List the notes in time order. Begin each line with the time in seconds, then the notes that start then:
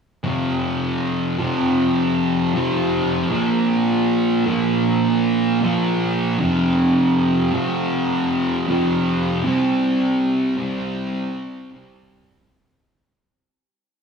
0.24 F2 C3 F3
1.39 F2 C3 F3
2.53 F2 C3 F3
3.30 A#2 F3 A#3
4.46 A#2 F3 A#3
5.61 A#2 F3 A#3
6.38 F2 C3 F3
7.52 F2 C3 F3
8.67 F2 C3 F3
9.43 C3 G3 C4
10.57 C3 G3 C4
11.72 C3 G3 C4